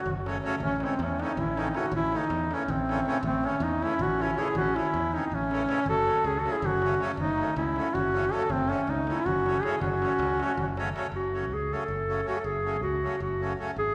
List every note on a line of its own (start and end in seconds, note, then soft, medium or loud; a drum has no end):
0.00 0.44 F#4 loud
0.06 0.39 F#1 medium
0.06 darbuka dum medium
0.17 darbuka tek soft
0.24 0.37 C#3 medium
0.24 0.37 F#3 medium
0.24 0.37 A3 medium
0.24 0.38 C#4 medium
0.24 darbuka tek medium
0.34 darbuka tek soft
0.43 0.55 C#3 medium
0.43 0.55 F#3 medium
0.43 0.55 A3 medium
0.43 0.56 C#4 medium
0.43 darbuka tek medium
0.52 darbuka tek soft
0.60 0.83 A1 medium
0.60 0.78 A3 medium
0.60 0.78 C#4 loud
0.60 darbuka dum medium
0.71 darbuka tek soft
0.78 0.85 A3 soft
0.78 0.85 C#4 medium
0.78 darbuka tek medium
0.82 0.94 C#3 medium
0.82 0.94 E3 medium
0.82 1.00 G#3 medium
0.82 0.94 A3 soft
0.82 1.01 C4 medium
0.82 0.94 C#4 medium
0.90 darbuka tek soft
0.99 1.22 E2 medium
0.99 1.23 A3 medium
0.99 darbuka tek medium
1.03 1.23 C#4 medium
1.20 1.32 C#3 medium
1.20 1.32 E3 medium
1.20 1.33 A3 medium
1.20 1.42 C4 medium
1.20 1.33 C#4 medium
1.20 1.41 D#4 medium
1.20 darbuka tek medium
1.29 darbuka tek soft
1.37 1.70 A1 medium
1.37 1.63 C#4 medium
1.37 1.61 E4 medium
1.37 darbuka dum medium
1.49 darbuka tek soft
1.55 1.68 C#3 medium
1.55 1.68 E3 medium
1.55 1.68 A3 medium
1.55 1.69 C#4 medium
1.55 darbuka tek medium
1.59 1.78 C4 medium
1.59 1.79 D#4 medium
1.73 1.85 C#3 medium
1.73 1.86 E3 medium
1.73 1.86 A3 medium
1.73 1.86 C#4 medium
1.73 1.93 D#4 medium
1.73 darbuka tek medium
1.77 1.93 F#4 medium
1.92 2.15 A1 loud
1.92 2.16 C#4 medium
1.92 darbuka dum medium
1.96 2.18 E4 loud
2.03 darbuka tek soft
2.12 2.24 C#3 medium
2.12 2.24 E3 medium
2.12 2.25 A3 soft
2.12 2.55 A3 medium
2.12 2.25 C#4 medium
2.12 darbuka tek medium
2.16 2.55 D#4 medium
2.22 darbuka tek soft
2.30 2.53 E2 medium
2.30 darbuka tek medium
2.51 2.63 C#3 medium
2.51 2.63 E3 soft
2.51 2.63 A3 medium
2.51 2.71 A3 medium
2.51 2.64 C#4 medium
2.51 2.73 C#4 medium
2.51 darbuka tek medium
2.61 darbuka tek soft
2.68 3.01 A1 loud
2.68 3.24 A3 medium
2.68 3.24 C4 medium
2.68 darbuka dum medium
2.79 darbuka tek soft
2.88 3.00 C#3 medium
2.88 3.00 E3 medium
2.88 3.00 A3 medium
2.88 3.01 C#4 medium
2.88 darbuka tek medium
3.06 3.17 C#3 medium
3.06 3.18 E3 medium
3.06 3.18 A3 medium
3.06 3.18 C#4 medium
3.06 darbuka tek medium
3.23 3.46 A1 loud
3.23 3.44 A3 medium
3.23 3.48 C4 medium
3.23 darbuka dum medium
3.34 darbuka tek soft
3.44 3.55 C#3 medium
3.44 3.56 E3 soft
3.44 3.64 A3 medium
3.44 3.56 A3 soft
3.44 3.56 C#4 medium
3.44 3.64 C#4 medium
3.44 darbuka tek medium
3.53 darbuka tek soft
3.60 3.83 E2 loud
3.60 3.86 A3 medium
3.60 3.85 D#4 medium
3.60 darbuka tek medium
3.82 3.94 C#3 medium
3.82 3.94 E3 medium
3.82 3.94 A3 medium
3.82 3.95 C#4 medium
3.82 4.02 C#4 medium
3.82 4.04 E4 medium
3.82 darbuka tek medium
3.92 darbuka tek soft
3.99 4.32 A1 loud
3.99 4.23 C#4 medium
3.99 4.24 F#4 loud
3.99 darbuka dum medium
4.11 darbuka tek soft
4.18 4.30 C#3 medium
4.18 4.31 E3 medium
4.18 4.31 A3 medium
4.18 4.31 C#4 medium
4.18 darbuka tek medium
4.22 4.42 C#4 medium
4.22 4.40 E4 medium
4.35 4.48 C#3 medium
4.35 4.48 E3 medium
4.35 4.48 A3 medium
4.35 4.48 C#4 medium
4.35 darbuka tek medium
4.39 4.56 E4 medium
4.39 4.55 G#4 medium
4.55 4.78 A1 medium
4.55 4.77 F#4 loud
4.55 darbuka dum loud
4.60 4.79 C#4 loud
4.66 darbuka tek soft
4.75 4.87 C#3 soft
4.75 4.87 E3 medium
4.75 4.87 A3 medium
4.75 4.87 C#4 medium
4.75 5.17 E4 medium
4.75 darbuka tek medium
4.79 5.18 C#4 medium
4.85 darbuka tek soft
4.94 5.16 E2 medium
4.94 darbuka tek medium
5.12 5.24 C#3 medium
5.12 5.25 E3 medium
5.12 5.25 A3 soft
5.12 5.25 C#4 medium
5.12 5.24 D#4 medium
5.12 darbuka dum soft
5.17 5.25 C4 medium
5.24 5.36 C4 medium
5.24 5.36 D#4 medium
5.32 5.64 A1 medium
5.32 5.87 A3 medium
5.32 5.87 C#4 medium
5.32 darbuka dum medium
5.50 5.62 C#3 medium
5.50 5.62 E3 medium
5.50 5.63 A3 medium
5.50 5.63 C#4 medium
5.50 darbuka tek medium
5.67 5.79 C#3 medium
5.67 5.80 E3 medium
5.67 5.80 A3 medium
5.67 5.80 C#4 medium
5.67 darbuka tek medium
5.86 6.09 F#1 medium
5.86 6.28 F#4 medium
5.86 6.29 A4 loud
5.86 darbuka dum medium
6.05 6.18 C#3 medium
6.05 6.18 F#3 soft
6.05 6.19 A3 soft
6.05 6.19 C#4 medium
6.05 darbuka tek medium
6.16 darbuka tek soft
6.24 6.47 C#2 medium
6.24 6.40 C#4 medium
6.24 6.41 G#4 medium
6.24 darbuka tek medium
6.38 6.54 F#4 medium
6.38 6.54 A4 medium
6.43 6.56 C#3 medium
6.43 6.56 F#3 soft
6.43 6.56 A3 medium
6.43 6.57 C#4 medium
6.43 darbuka tek medium
6.52 6.66 E4 medium
6.52 6.67 G#4 medium
6.52 darbuka tek soft
6.62 6.95 F#1 loud
6.62 7.01 C#4 medium
6.62 7.01 F#4 loud
6.62 darbuka dum medium
6.73 darbuka tek soft
6.82 6.94 C#3 medium
6.82 6.94 F#3 medium
6.82 6.95 A3 medium
6.82 6.95 C#4 medium
6.82 darbuka tek medium
7.00 7.11 C#3 medium
7.00 7.11 F#3 medium
7.00 7.12 A3 medium
7.00 7.12 C#4 medium
7.00 darbuka tek medium
7.17 7.40 F#1 medium
7.17 7.54 D#4 loud
7.17 darbuka dum loud
7.21 7.55 A3 medium
7.28 darbuka tek soft
7.38 7.50 C#3 medium
7.38 7.50 F#3 medium
7.38 7.51 A3 soft
7.38 7.51 C#4 medium
7.38 darbuka tek medium
7.47 darbuka tek soft
7.56 7.79 C#2 loud
7.56 7.97 C#4 medium
7.56 7.96 E4 medium
7.56 darbuka tek medium
7.75 7.87 C#3 medium
7.75 7.88 F#3 medium
7.75 7.88 A3 soft
7.75 7.89 C#4 medium
7.75 darbuka tek medium
7.86 darbuka tek soft
7.94 8.28 F#1 loud
7.94 8.35 C#4 medium
7.94 8.34 F#4 loud
7.94 darbuka dum medium
8.05 darbuka tek soft
8.12 8.24 C#3 medium
8.12 8.25 F#3 soft
8.12 8.25 A3 medium
8.12 8.25 C#4 medium
8.12 darbuka tek medium
8.30 8.43 C#3 medium
8.30 8.43 F#3 medium
8.30 8.43 A3 medium
8.30 8.43 C#4 medium
8.30 8.52 F#4 medium
8.30 8.53 A4 medium
8.30 darbuka tek medium
8.49 8.72 F#1 medium
8.49 8.73 A3 medium
8.49 8.72 C4 loud
8.49 darbuka dum medium
8.60 darbuka tek soft
8.69 8.81 C#3 medium
8.69 8.81 F#3 soft
8.69 8.81 A3 soft
8.69 8.89 A3 medium
8.69 8.82 C#4 medium
8.69 8.91 C#4 medium
8.69 darbuka tek medium
8.79 darbuka tek soft
8.87 9.11 C#2 medium
8.87 9.09 A3 medium
8.87 9.13 D#4 medium
8.87 darbuka tek medium
9.07 9.19 C#3 medium
9.07 9.20 F#3 medium
9.07 9.20 A3 soft
9.07 9.13 C#4 medium
9.07 9.20 C#4 medium
9.07 darbuka tek medium
9.11 9.19 C4 medium
9.11 9.21 D#4 medium
9.11 9.15 E4 medium
9.17 9.26 C#4 medium
9.17 9.28 E4 loud
9.17 darbuka tek soft
9.25 9.59 F#1 medium
9.25 9.66 C#4 medium
9.25 9.64 F#4 loud
9.25 darbuka dum medium
9.36 darbuka tek soft
9.46 9.57 C#3 medium
9.46 9.57 F#3 medium
9.46 9.58 A3 medium
9.46 9.58 C#4 medium
9.46 darbuka tek medium
9.62 9.75 C#3 medium
9.62 9.75 F#3 medium
9.62 9.75 A3 medium
9.62 9.76 C#4 medium
9.62 9.81 E4 medium
9.62 9.80 G#4 medium
9.62 darbuka tek medium
9.81 10.04 F#1 loud
9.81 10.74 C#4 medium
9.81 10.73 F#4 loud
9.81 darbuka dum medium
9.92 darbuka tek soft
10.00 10.12 C#3 medium
10.00 10.13 F#3 medium
10.00 10.13 A3 soft
10.00 10.14 C#4 medium
10.00 darbuka tek medium
10.11 darbuka tek soft
10.19 10.42 C#2 medium
10.19 darbuka tek medium
10.39 10.51 C#3 medium
10.39 10.52 F#3 medium
10.39 10.52 A3 medium
10.39 10.52 C#4 medium
10.39 darbuka tek medium
10.49 darbuka tek soft
10.57 10.90 F#1 medium
10.57 darbuka dum medium
10.68 darbuka tek soft
10.77 10.89 C#3 medium
10.77 10.89 F#3 medium
10.77 10.89 A3 medium
10.77 10.90 C#4 medium
10.77 darbuka tek medium
10.87 darbuka tek soft
10.94 11.06 C#3 medium
10.94 11.07 F#3 medium
10.94 11.07 A3 medium
10.94 11.07 C#4 medium
10.94 darbuka tek medium
11.05 darbuka tek soft
11.12 11.50 F#1 medium
11.12 11.55 F#4 medium
11.32 11.45 C#3 medium
11.32 11.45 F#3 soft
11.32 11.45 A3 soft
11.32 11.46 C#4 soft
11.50 11.73 C#2 medium
11.54 11.75 G#4 medium
11.71 11.83 C#3 medium
11.71 11.83 F#3 soft
11.71 11.84 A3 medium
11.71 11.84 C#4 medium
11.71 12.28 A4 medium
11.88 12.22 F#1 medium
12.07 12.20 C#3 medium
12.07 12.21 F#3 medium
12.07 12.21 A3 medium
12.07 12.21 C#4 medium
12.25 12.38 C#3 medium
12.25 12.38 F#3 medium
12.25 12.38 A3 medium
12.25 12.39 C#4 medium
12.25 12.39 F#4 medium
12.38 12.47 A4 medium
12.44 12.83 F#1 medium
12.44 12.82 G#4 medium
12.63 12.76 C#3 medium
12.63 12.77 F#3 soft
12.63 12.77 A3 soft
12.63 12.77 C#4 medium
12.83 13.06 C#2 medium
12.83 13.19 F#4 medium
13.02 13.15 C#3 medium
13.02 13.15 F#3 soft
13.02 13.16 A3 medium
13.02 13.16 C#4 medium
13.20 13.54 F#1 medium
13.20 13.56 F#4 medium
13.39 13.52 C#3 medium
13.39 13.53 F#3 medium
13.39 13.53 A3 medium
13.39 13.54 C#4 medium
13.58 13.71 C#3 medium
13.58 13.71 F#3 medium
13.58 13.71 A3 medium
13.58 13.72 C#4 medium
13.76 13.95 G#1 medium
13.76 13.95 G#4 medium